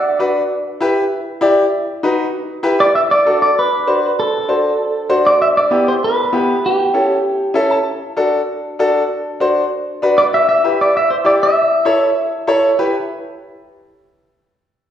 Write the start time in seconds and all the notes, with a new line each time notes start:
Already playing: D5
0.19 D4 F#4 B4
0.81 E4 G4 B4
1.41 E4 G4 D5
2.03 D#4 F#4 B4
2.63 E4 G4 B4
2.80 D5
2.95 E5
3.11 D5
3.26 D4 F#4 A4
3.42 D5
3.59 B4
3.87 D4 F#4 C5
4.20 A4
4.48 D4 F#4 C5
5.09 D4 F#4 C5
5.26 D5
5.42 E5
5.57 D5
5.71 B3 E4 G4
5.88 C5
6.04 B4
6.33 B3 E4 G4
6.66 G4
6.94 C#4 E4 A4
7.54 C#4 E4 A4 E5
7.71 A5
8.17 D4 F#4 A4
8.79 D4 F#4 A4
9.40 D4 F#4 C5
10.02 D4 F#4 B4
10.18 D5
10.34 E5
10.49 E5
10.64 E4 G4 B4
10.81 D5
10.97 E5
11.10 C5
11.24 E4 G4 D5
11.43 E5
11.85 E4 A4 C#5
12.47 E4 A4 C#5
12.79 E4 G4 B4